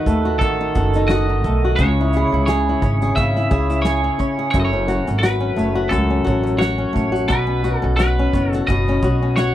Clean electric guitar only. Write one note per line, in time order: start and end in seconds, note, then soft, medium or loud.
0.00 0.38 B4 medium
0.39 1.11 A4 medium
1.08 1.76 D#5 loud
1.76 2.45 C#5 loud
2.46 3.15 C#5 medium
3.16 3.82 E5 loud
3.82 4.49 C#5 medium
4.51 4.59 C#5 loud
4.60 4.64 D#5 medium
4.65 5.18 C#5 loud
5.19 5.92 B4 loud
5.89 6.56 A4 medium
6.59 7.25 C#5 loud
7.28 7.77 B4 loud
7.77 7.94 A4 loud
7.96 8.50 B4 loud
8.50 8.67 A4 loud
8.67 9.36 D#5 loud
9.36 9.55 C#5 loud